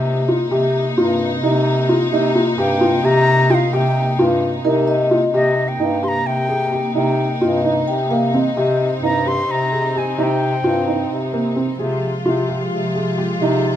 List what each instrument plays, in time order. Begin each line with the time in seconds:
Already playing: bass clarinet C3, string section C3 A#3 D#4, felt piano G4
0.28 felt piano F4
0.51 bass clarinet C3, felt piano G4
0.97 bass clarinet G2, felt piano F4
1.43 bass clarinet C3, felt piano D#4
1.89 felt piano F4
2.11 bass clarinet C3, felt piano D#4
2.35 felt piano F4
2.57 bass clarinet G2, felt piano G4, flute G5
2.81 felt piano F4
3.03 bass clarinet C3, felt piano G4, flute A#5
3.50 felt piano F4, flute G5
3.54 flute F5
3.73 bass clarinet C3, felt piano G4, flute G5
4.19 bass clarinet G2, felt piano F4
4.65 bass clarinet C3, felt piano D#4, vibraphone A#4
4.88 vibraphone D#5
5.11 felt piano F4
5.33 bass clarinet C3, string section C3 A#3 D#4, felt piano G4, flute D#5
5.68 flute G5
5.80 bass clarinet G2, felt piano D#4
6.03 felt piano G4, flute C6
6.08 flute A#5
6.25 bass clarinet C3, flute G5
6.49 felt piano G#4
6.72 felt piano G4
6.95 bass clarinet C3, felt piano D#4, flute G5
7.41 bass clarinet G2, felt piano F4, vibraphone D#5
7.65 felt piano D#4
7.87 bass clarinet C3, vibraphone G5
8.11 felt piano A#3, vibraphone F5
8.34 felt piano C4, vibraphone D#5
8.56 bass clarinet C3, string section C4, felt piano G4, vibraphone D#5
9.02 bass clarinet G2, felt piano D#4, flute A#5
9.26 felt piano G4, flute C6
9.48 bass clarinet C3, flute A#5
9.72 felt piano G#4
9.95 felt piano G4, flute G#5
10.18 bass clarinet C3, felt piano D#4, flute A#5
10.23 flute G5
10.63 bass clarinet G2, felt piano F4
10.87 felt piano D#4
11.10 bass clarinet C3
11.33 felt piano A#3
11.56 felt piano C4
11.79 bass clarinet C3, string section F3 G#3 F4, felt piano G#4
12.25 bass clarinet C3, felt piano F4
12.49 felt piano G4
12.71 bass clarinet C3
12.95 felt piano G#4
13.18 felt piano G4
13.40 bass clarinet C3, felt piano D#4